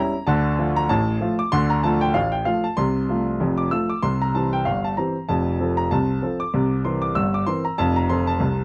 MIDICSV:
0, 0, Header, 1, 2, 480
1, 0, Start_track
1, 0, Key_signature, -1, "major"
1, 0, Tempo, 625000
1, 214, Time_signature, 2, 2, 24, 8
1, 6638, End_track
2, 0, Start_track
2, 0, Title_t, "Grand piano"
2, 0, Program_c, 0, 0
2, 0, Note_on_c, 0, 55, 52
2, 0, Note_on_c, 0, 61, 55
2, 0, Note_on_c, 0, 64, 57
2, 0, Note_on_c, 0, 82, 95
2, 100, Note_off_c, 0, 55, 0
2, 105, Note_off_c, 0, 61, 0
2, 107, Note_off_c, 0, 64, 0
2, 204, Note_on_c, 0, 81, 90
2, 208, Note_off_c, 0, 82, 0
2, 208, Note_on_c, 0, 38, 83
2, 210, Note_on_c, 0, 50, 96
2, 348, Control_c, 0, 64, 127
2, 413, Note_off_c, 0, 38, 0
2, 414, Note_off_c, 0, 50, 0
2, 450, Note_on_c, 0, 53, 47
2, 451, Note_on_c, 0, 57, 50
2, 455, Note_on_c, 0, 65, 50
2, 582, Note_off_c, 0, 53, 0
2, 583, Note_off_c, 0, 57, 0
2, 583, Note_off_c, 0, 81, 0
2, 586, Note_off_c, 0, 65, 0
2, 587, Note_on_c, 0, 82, 95
2, 686, Note_on_c, 0, 81, 99
2, 689, Note_on_c, 0, 45, 83
2, 691, Note_off_c, 0, 82, 0
2, 692, Note_on_c, 0, 33, 77
2, 698, Control_c, 0, 64, 0
2, 893, Note_off_c, 0, 45, 0
2, 895, Note_off_c, 0, 33, 0
2, 928, Note_on_c, 0, 53, 59
2, 933, Note_on_c, 0, 57, 51
2, 935, Note_on_c, 0, 65, 60
2, 1060, Note_off_c, 0, 53, 0
2, 1064, Note_off_c, 0, 57, 0
2, 1064, Note_off_c, 0, 81, 0
2, 1065, Note_off_c, 0, 65, 0
2, 1067, Note_on_c, 0, 86, 93
2, 1167, Note_on_c, 0, 84, 114
2, 1170, Note_off_c, 0, 86, 0
2, 1170, Note_on_c, 0, 50, 88
2, 1172, Note_on_c, 0, 38, 87
2, 1304, Note_off_c, 0, 84, 0
2, 1306, Note_on_c, 0, 82, 86
2, 1337, Control_c, 0, 64, 127
2, 1374, Note_off_c, 0, 50, 0
2, 1375, Note_off_c, 0, 38, 0
2, 1409, Note_on_c, 0, 81, 87
2, 1410, Note_off_c, 0, 82, 0
2, 1413, Note_on_c, 0, 53, 44
2, 1417, Note_on_c, 0, 57, 48
2, 1417, Note_on_c, 0, 65, 51
2, 1544, Note_off_c, 0, 53, 0
2, 1545, Note_on_c, 0, 79, 91
2, 1546, Note_off_c, 0, 81, 0
2, 1547, Note_off_c, 0, 57, 0
2, 1547, Note_off_c, 0, 65, 0
2, 1643, Note_on_c, 0, 77, 93
2, 1646, Note_on_c, 0, 33, 70
2, 1647, Note_on_c, 0, 45, 73
2, 1649, Note_off_c, 0, 79, 0
2, 1658, Control_c, 0, 64, 0
2, 1780, Note_on_c, 0, 79, 78
2, 1783, Note_off_c, 0, 77, 0
2, 1852, Note_off_c, 0, 33, 0
2, 1853, Note_off_c, 0, 45, 0
2, 1884, Note_on_c, 0, 77, 85
2, 1887, Note_off_c, 0, 79, 0
2, 1890, Note_on_c, 0, 53, 46
2, 1895, Note_on_c, 0, 57, 42
2, 1896, Note_on_c, 0, 65, 54
2, 2023, Note_off_c, 0, 53, 0
2, 2024, Note_off_c, 0, 77, 0
2, 2026, Note_off_c, 0, 57, 0
2, 2026, Note_on_c, 0, 81, 81
2, 2027, Note_off_c, 0, 65, 0
2, 2126, Note_on_c, 0, 84, 96
2, 2131, Note_off_c, 0, 81, 0
2, 2131, Note_on_c, 0, 36, 69
2, 2132, Note_on_c, 0, 48, 81
2, 2267, Control_c, 0, 64, 127
2, 2336, Note_off_c, 0, 36, 0
2, 2337, Note_off_c, 0, 48, 0
2, 2374, Note_on_c, 0, 53, 43
2, 2377, Note_on_c, 0, 57, 43
2, 2381, Note_on_c, 0, 65, 47
2, 2506, Note_off_c, 0, 53, 0
2, 2508, Note_off_c, 0, 57, 0
2, 2511, Note_off_c, 0, 65, 0
2, 2613, Note_on_c, 0, 29, 71
2, 2614, Note_on_c, 0, 41, 71
2, 2624, Control_c, 0, 64, 0
2, 2746, Note_on_c, 0, 86, 80
2, 2747, Note_off_c, 0, 84, 0
2, 2818, Note_off_c, 0, 29, 0
2, 2818, Note_off_c, 0, 41, 0
2, 2851, Note_on_c, 0, 88, 84
2, 2852, Note_off_c, 0, 86, 0
2, 2856, Note_on_c, 0, 53, 42
2, 2858, Note_on_c, 0, 57, 46
2, 2859, Note_on_c, 0, 65, 54
2, 2988, Note_off_c, 0, 53, 0
2, 2990, Note_off_c, 0, 57, 0
2, 2990, Note_off_c, 0, 65, 0
2, 2990, Note_off_c, 0, 88, 0
2, 2992, Note_on_c, 0, 86, 74
2, 3091, Note_on_c, 0, 84, 95
2, 3093, Note_on_c, 0, 48, 73
2, 3095, Note_on_c, 0, 36, 70
2, 3096, Note_off_c, 0, 86, 0
2, 3230, Note_off_c, 0, 84, 0
2, 3231, Control_c, 0, 64, 127
2, 3238, Note_on_c, 0, 82, 77
2, 3299, Note_off_c, 0, 48, 0
2, 3300, Note_off_c, 0, 36, 0
2, 3339, Note_off_c, 0, 82, 0
2, 3339, Note_on_c, 0, 81, 74
2, 3343, Note_on_c, 0, 52, 40
2, 3346, Note_on_c, 0, 60, 39
2, 3351, Note_on_c, 0, 67, 43
2, 3474, Note_off_c, 0, 52, 0
2, 3475, Note_off_c, 0, 81, 0
2, 3476, Note_off_c, 0, 60, 0
2, 3478, Note_on_c, 0, 79, 78
2, 3479, Note_off_c, 0, 67, 0
2, 3573, Note_on_c, 0, 77, 80
2, 3578, Note_on_c, 0, 31, 66
2, 3579, Note_on_c, 0, 43, 65
2, 3580, Note_off_c, 0, 79, 0
2, 3583, Control_c, 0, 64, 0
2, 3712, Note_off_c, 0, 77, 0
2, 3721, Note_on_c, 0, 81, 76
2, 3782, Note_off_c, 0, 31, 0
2, 3783, Note_off_c, 0, 43, 0
2, 3819, Note_on_c, 0, 82, 70
2, 3821, Note_off_c, 0, 81, 0
2, 3823, Note_on_c, 0, 52, 41
2, 3825, Note_on_c, 0, 60, 49
2, 3828, Note_on_c, 0, 67, 45
2, 3954, Note_off_c, 0, 52, 0
2, 3955, Note_off_c, 0, 60, 0
2, 3958, Note_off_c, 0, 67, 0
2, 4059, Note_off_c, 0, 82, 0
2, 4059, Note_on_c, 0, 81, 85
2, 4063, Note_on_c, 0, 41, 76
2, 4064, Note_on_c, 0, 29, 69
2, 4184, Control_c, 0, 64, 127
2, 4265, Note_off_c, 0, 41, 0
2, 4266, Note_off_c, 0, 29, 0
2, 4301, Note_on_c, 0, 53, 41
2, 4304, Note_on_c, 0, 60, 41
2, 4305, Note_on_c, 0, 69, 43
2, 4433, Note_off_c, 0, 53, 0
2, 4433, Note_on_c, 0, 82, 81
2, 4435, Note_off_c, 0, 60, 0
2, 4436, Note_off_c, 0, 69, 0
2, 4436, Note_off_c, 0, 81, 0
2, 4538, Note_off_c, 0, 82, 0
2, 4540, Note_on_c, 0, 81, 83
2, 4541, Note_on_c, 0, 48, 69
2, 4543, Note_on_c, 0, 36, 69
2, 4550, Control_c, 0, 64, 0
2, 4744, Note_off_c, 0, 48, 0
2, 4745, Note_off_c, 0, 36, 0
2, 4778, Note_on_c, 0, 53, 45
2, 4783, Note_on_c, 0, 60, 41
2, 4786, Note_on_c, 0, 69, 51
2, 4910, Note_off_c, 0, 53, 0
2, 4914, Note_off_c, 0, 60, 0
2, 4914, Note_on_c, 0, 86, 82
2, 4916, Note_off_c, 0, 69, 0
2, 4916, Note_off_c, 0, 81, 0
2, 5020, Note_on_c, 0, 36, 72
2, 5023, Note_on_c, 0, 48, 76
2, 5173, Control_c, 0, 64, 127
2, 5223, Note_off_c, 0, 36, 0
2, 5225, Note_off_c, 0, 48, 0
2, 5258, Note_off_c, 0, 86, 0
2, 5258, Note_on_c, 0, 84, 73
2, 5263, Note_on_c, 0, 52, 42
2, 5264, Note_on_c, 0, 60, 43
2, 5268, Note_on_c, 0, 70, 42
2, 5389, Note_on_c, 0, 86, 79
2, 5393, Note_off_c, 0, 52, 0
2, 5394, Note_off_c, 0, 60, 0
2, 5394, Note_off_c, 0, 84, 0
2, 5397, Note_off_c, 0, 70, 0
2, 5494, Note_on_c, 0, 88, 94
2, 5495, Note_off_c, 0, 86, 0
2, 5498, Note_on_c, 0, 43, 71
2, 5499, Note_on_c, 0, 31, 68
2, 5506, Control_c, 0, 64, 0
2, 5632, Note_off_c, 0, 88, 0
2, 5639, Note_on_c, 0, 86, 80
2, 5701, Note_off_c, 0, 43, 0
2, 5702, Note_off_c, 0, 31, 0
2, 5733, Note_on_c, 0, 84, 91
2, 5736, Note_on_c, 0, 52, 49
2, 5740, Note_off_c, 0, 86, 0
2, 5741, Note_on_c, 0, 60, 49
2, 5743, Note_on_c, 0, 70, 46
2, 5868, Note_off_c, 0, 52, 0
2, 5871, Note_off_c, 0, 84, 0
2, 5872, Note_off_c, 0, 60, 0
2, 5873, Note_off_c, 0, 70, 0
2, 5873, Note_on_c, 0, 82, 74
2, 5977, Note_off_c, 0, 82, 0
2, 5977, Note_on_c, 0, 81, 102
2, 5981, Note_on_c, 0, 41, 82
2, 5983, Note_on_c, 0, 29, 72
2, 6113, Note_off_c, 0, 81, 0
2, 6115, Note_on_c, 0, 82, 80
2, 6151, Control_c, 0, 64, 127
2, 6183, Note_off_c, 0, 41, 0
2, 6184, Note_off_c, 0, 29, 0
2, 6217, Note_off_c, 0, 82, 0
2, 6217, Note_on_c, 0, 84, 90
2, 6221, Note_on_c, 0, 53, 44
2, 6222, Note_on_c, 0, 60, 46
2, 6227, Note_on_c, 0, 69, 51
2, 6352, Note_off_c, 0, 53, 0
2, 6352, Note_off_c, 0, 60, 0
2, 6353, Note_off_c, 0, 84, 0
2, 6354, Note_on_c, 0, 81, 89
2, 6356, Note_off_c, 0, 69, 0
2, 6452, Note_on_c, 0, 36, 73
2, 6454, Note_on_c, 0, 48, 75
2, 6462, Control_c, 0, 64, 0
2, 6638, Note_off_c, 0, 36, 0
2, 6638, Note_off_c, 0, 48, 0
2, 6638, Note_off_c, 0, 81, 0
2, 6638, End_track
0, 0, End_of_file